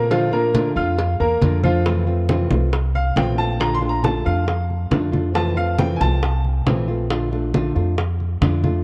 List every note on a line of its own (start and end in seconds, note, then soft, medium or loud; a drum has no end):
0.00 0.70 A#2 medium
0.10 0.31 D3 medium
0.10 0.28 F3 medium
0.10 0.31 A3 medium
0.10 0.32 D4 medium
0.10 0.29 F4 medium
0.10 0.30 F4 medium
0.10 0.29 F5 medium
0.10 cowbell loud
0.10 high conga soft
0.32 0.53 A3 soft
0.32 0.68 A#3 medium
0.32 0.53 D4 soft
0.32 0.53 F4 medium
0.32 0.68 A#4 medium
0.32 0.68 A#5 medium
0.32 high conga soft
0.54 0.75 D3 medium
0.54 0.75 A3 medium
0.54 0.76 D4 medium
0.54 0.74 F4 medium
0.54 cowbell medium
0.54 high conga medium
0.76 1.17 F2 loud
0.76 0.97 A3 soft
0.76 0.97 D4 soft
0.76 0.97 F4 medium
0.76 1.12 F4 medium
0.76 1.12 F5 medium
0.76 1.12 F6 medium
0.98 muted nylon-string guitar stroke medium
0.98 cowbell loud
0.98 high conga soft
1.20 1.40 E2 medium
1.20 1.56 A#3 medium
1.20 1.56 A#4 medium
1.20 1.56 A#5 medium
1.20 high conga soft
1.41 2.45 F2 loud
1.41 1.63 D3 medium
1.41 1.63 A3 medium
1.41 1.63 D4 medium
1.41 1.62 F4 medium
1.41 cowbell medium
1.41 high conga medium
1.63 1.81 F3 medium
1.63 1.85 A3 soft
1.63 1.85 D4 medium
1.63 1.84 F4 medium
1.63 1.81 F4 medium
1.63 1.82 F5 medium
1.63 high conga medium
1.85 2.06 C3 medium
1.85 2.06 E3 medium
1.85 2.07 A3 medium
1.85 2.06 C4 medium
1.85 2.06 F4 medium
1.85 high bongo medium
1.85 high conga soft
2.07 2.28 A3 soft
2.07 2.28 C4 soft
2.07 2.28 F4 soft
2.07 high conga soft
2.28 2.50 C3 medium
2.28 2.50 E3 medium
2.28 2.50 A3 medium
2.28 2.50 C4 medium
2.28 2.49 F4 medium
2.28 high bongo medium
2.28 high conga loud
2.50 3.12 C2 medium
2.50 2.71 A3 soft
2.50 2.72 C4 soft
2.50 2.72 F4 soft
2.50 high conga medium
2.50 low conga medium
2.72 muted nylon-string guitar stroke medium
2.72 high bongo medium
2.72 high conga soft
2.95 3.16 F5 medium
2.95 high conga soft
3.16 4.19 A#1 medium
3.16 3.37 C3 medium
3.16 3.37 E3 medium
3.16 3.37 A3 medium
3.16 3.37 C4 medium
3.16 3.37 F4 medium
3.16 3.38 G5 medium
3.16 high bongo medium
3.16 low bongo medium
3.16 high conga medium
3.38 3.59 A3 soft
3.38 3.59 C4 medium
3.38 3.59 F4 medium
3.38 3.59 A5 medium
3.59 3.81 D3 medium
3.59 3.81 A3 medium
3.59 3.80 D4 medium
3.59 3.80 F4 medium
3.59 3.74 A#5 medium
3.59 high bongo medium
3.59 high conga soft
3.75 3.89 C6 loud
3.81 4.02 A3 soft
3.81 4.03 D4 medium
3.81 4.02 F4 soft
3.81 high bongo soft
3.81 high conga soft
3.89 4.03 A#5 medium
4.02 4.24 D3 medium
4.02 4.25 A3 medium
4.02 4.25 D4 medium
4.02 4.24 F4 medium
4.02 4.25 A5 medium
4.02 high bongo medium
4.02 high conga loud
4.25 4.87 F2 medium
4.25 4.47 A3 soft
4.25 4.47 D4 medium
4.25 4.46 F4 soft
4.25 4.87 F5 medium
4.25 high bongo soft
4.47 muted nylon-string guitar stroke medium
4.47 high bongo medium
4.47 high conga soft
4.70 high conga soft
4.91 5.94 F2 medium
4.91 5.12 D3 medium
4.91 5.12 A3 medium
4.91 5.12 D4 medium
4.91 5.11 F4 medium
4.91 high bongo medium
4.91 low bongo medium
4.91 high conga medium
5.12 5.34 A3 soft
5.12 5.34 D4 medium
5.12 5.34 F4 medium
5.12 high bongo soft
5.12 high conga medium
5.34 5.55 C3 medium
5.34 5.56 E3 medium
5.34 5.56 A3 medium
5.34 5.55 C4 medium
5.34 5.55 F4 medium
5.34 5.56 A5 medium
5.34 high bongo medium
5.34 high conga soft
5.56 5.78 A3 soft
5.56 5.78 C4 soft
5.56 5.77 F4 medium
5.56 5.78 F5 medium
5.56 high conga soft
5.78 6.00 C3 medium
5.78 6.00 E3 medium
5.78 6.00 A3 medium
5.78 6.00 C4 medium
5.78 6.00 F4 medium
5.78 6.00 G5 medium
5.78 high bongo medium
5.78 high conga loud
5.96 5.99 G#5 medium
6.00 6.62 C2 loud
6.00 6.22 A3 soft
6.00 6.22 C4 medium
6.00 6.22 F4 medium
6.00 6.42 A5 loud
6.00 high conga medium
6.00 low conga medium
6.22 muted nylon-string guitar stroke medium
6.22 high bongo medium
6.22 high conga soft
6.45 high conga soft
6.66 7.70 A#1 medium
6.66 6.87 C3 medium
6.66 6.88 E3 medium
6.66 6.88 A3 medium
6.66 6.88 C4 medium
6.66 6.87 F4 medium
6.66 high bongo medium
6.66 low bongo medium
6.66 high conga medium
6.88 7.09 A3 soft
6.88 7.10 C4 soft
6.88 7.09 F4 medium
7.10 7.31 D3 medium
7.10 7.31 A3 medium
7.10 7.32 D4 medium
7.10 7.31 F4 medium
7.10 high bongo medium
7.10 high conga soft
7.32 7.53 A3 soft
7.32 7.54 D4 soft
7.32 7.53 F4 soft
7.32 high bongo soft
7.32 high conga soft
7.54 7.75 D3 medium
7.54 7.75 A3 medium
7.54 7.76 D4 medium
7.54 7.74 F4 medium
7.54 high bongo medium
7.54 high conga loud
7.76 8.38 F2 medium
7.76 7.97 A3 soft
7.76 7.97 D4 soft
7.76 7.97 F4 medium
7.76 high bongo soft
7.98 muted nylon-string guitar stroke medium
7.98 high bongo medium
7.98 high conga soft
8.20 high conga soft
8.41 8.84 F2 medium
8.41 8.63 D3 medium
8.41 8.63 A3 medium
8.41 8.63 D4 medium
8.41 8.63 F4 medium
8.41 high bongo medium
8.41 low bongo medium
8.41 high conga medium
8.64 8.84 A3 soft
8.64 8.84 D4 medium
8.64 8.84 F4 medium
8.64 high bongo soft
8.64 high conga medium